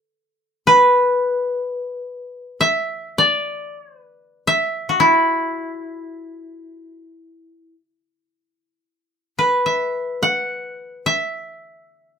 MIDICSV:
0, 0, Header, 1, 2, 480
1, 0, Start_track
1, 0, Tempo, 500000
1, 11702, End_track
2, 0, Start_track
2, 0, Title_t, "Koto"
2, 0, Program_c, 0, 107
2, 643, Note_on_c, 0, 71, 67
2, 2453, Note_off_c, 0, 71, 0
2, 2502, Note_on_c, 0, 76, 77
2, 3056, Note_on_c, 0, 74, 77
2, 3853, Note_off_c, 0, 74, 0
2, 3853, Note_on_c, 0, 71, 77
2, 3935, Note_off_c, 0, 76, 0
2, 4295, Note_on_c, 0, 76, 75
2, 4592, Note_off_c, 0, 71, 0
2, 4696, Note_on_c, 0, 66, 45
2, 4799, Note_on_c, 0, 64, 66
2, 5729, Note_off_c, 0, 76, 0
2, 6723, Note_off_c, 0, 66, 0
2, 7420, Note_off_c, 0, 64, 0
2, 9010, Note_on_c, 0, 71, 51
2, 9272, Note_on_c, 0, 76, 48
2, 9817, Note_on_c, 0, 78, 59
2, 10615, Note_off_c, 0, 76, 0
2, 10619, Note_on_c, 0, 76, 61
2, 10715, Note_off_c, 0, 71, 0
2, 11154, Note_off_c, 0, 78, 0
2, 11702, Note_off_c, 0, 76, 0
2, 11702, End_track
0, 0, End_of_file